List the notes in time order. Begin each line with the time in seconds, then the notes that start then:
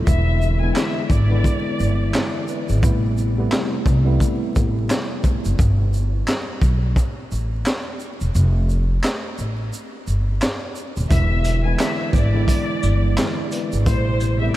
0.06 E1 D3 E3 G#3 B3 E4 E5, kick, shaker
0.42 shaker
0.61 D3 E3 G#3 B3 E4 G#5
0.76 E5, snare, clap, shaker
1.10 G#1 D5, kick, shaker
1.30 D3 E3 G#3 B3 E4
1.44 kick, shaker
1.80 G1, shaker
2.14 E5, snare, clap, shaker
2.34 D5
2.48 B4, shaker
2.69 G#1 G#4, shaker
2.82 A1 C3 G3 A3 B3 E4, kick, shaker
3.18 shaker
3.37 C3 G3 A3 B3 E4
3.52 snare, clap, shaker
3.86 C2, kick, shaker
4.05 C3 G3 A3 B3 E4
4.20 kick, shaker
4.56 A1, kick, shaker
4.90 snare, clap, shaker
5.24 kick, shaker
5.45 F#1, shaker
5.59 G1, kick, shaker
5.93 shaker
6.28 snare, clap, shaker
6.62 B1, kick, shaker
6.96 kick, shaker
7.32 A1, shaker
7.66 snare, clap, shaker
8.00 shaker
8.21 E1, shaker
8.35 F1, shaker
8.69 shaker
9.04 snare, clap, shaker
9.38 A1, shaker
9.73 shaker
10.07 G1, shaker
10.42 snare, clap, shaker
10.76 shaker
10.97 D#1, shaker
11.09 E1 D3 E3 G#3 B3 E4 E5, kick, closed hi-hat, shaker
11.45 closed hi-hat, shaker
11.64 D3 E3 G#3 B3 E4 G#5
11.79 E5, snare, clap, closed hi-hat, shaker
12.13 G#1 D5, kick, shaker
12.16 shaker
12.33 D3 E3 G#3 B3 E4
12.48 kick, closed hi-hat, shaker
12.83 G1, shaker
13.17 E5, snare, clap, closed hi-hat, shaker
13.38 D5
13.51 B4, closed hi-hat, shaker
13.72 G#1 G#4, shaker
13.86 A1 B2 C3 G3 A3 E4 C5, kick, closed hi-hat, shaker
14.20 shaker
14.41 C3 G3 A3 B3 E4 E5